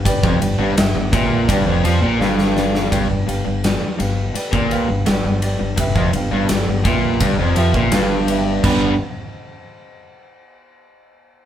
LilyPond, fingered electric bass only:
\new Staff \with { instrumentName = "Fingered electric bass" } { \clef bass \time 4/4 \key g \mixolydian \tempo 4 = 84 g,,16 f,,16 g,,16 g,,16 g,,16 g,,16 bes,,8 g,,16 f,,16 f,16 bes,,16 g,,4 | g,,16 g,,16 g,,16 g,,8 r16 g,,8 r16 bes,,8 g,,16 g,,16 g,,8 g,,16 | g,,16 f,,16 g,,16 g,,16 g,,16 g,,16 bes,,8 g,,16 f,,16 f,16 bes,,16 g,,4 | g,,8 r2. r8 | }